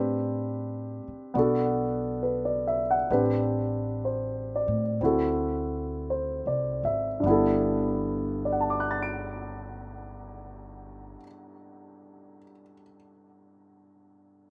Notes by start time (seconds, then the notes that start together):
Already playing: A2 C4 D4 G4 B4
1.08 muted upright bass stroke
1.34 B1 B3 D4 F#4
1.39 A4
2.23 B4
2.45 D5
2.67 E5
2.91 F#5
3.10 A1 C4 D4 G4 B4
4.05 C5
4.56 D5
4.68 A2
5.01 D2 C4 E4 F#4
5.06 A4
6.10 C5
6.46 C2 D5
6.83 G#1 E5
7.20 G1 G2 G3
7.26 B3 E4
7.31 A4
8.45 D5
8.52 F#5
8.60 A5
8.70 D6
8.80 F#6
8.91 A6
9.03 D7